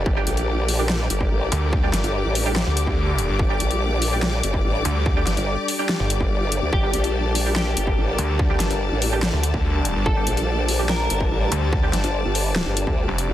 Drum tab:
HH |--xx--o---x---x-|--xx--o---x---x-|--xx--o---x---x-|--xx--o---x---x-|
SD |--------o-------|--o-----o-------|--------o-------|--o-----o-------|
BD |o----------o----|o----------o----|o----------o----|o----------o----|

HH |--xx--o---x---x-|--xx--o---x---x-|--xx--o---x---x-|--xx--o---x---x-|
SD |--------o-------|--o-----o-------|--------o-------|--o-----o-------|
BD |o----------o----|o----------o----|o----------o----|o----------o----|